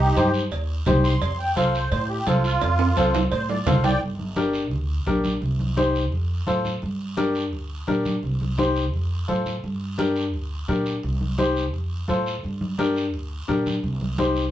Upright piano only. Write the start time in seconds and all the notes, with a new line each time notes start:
0.16 D#4 G4 C5
0.86 D#4 G4 C5
1.56 F4 A4 C5
2.27 F4 A4 C5
2.97 F4 A4 C5
3.66 F4 A4 C5
4.36 D4 G4 A#4
5.06 D4 G4 A#4
5.76 D#4 G4 C5
6.47 F4 A4 C5
7.17 D4 G4 A#4
7.87 D4 G4 A#4
8.58 D#4 G4 C5
9.28 F4 A4 C5
9.98 D4 G4 A#4
10.68 D4 G4 A#4
11.38 D#4 G4 C5
12.08 F4 A4 C5
12.78 D4 G4 A#4
13.48 D4 G4 A#4
14.19 D#4 G4 C5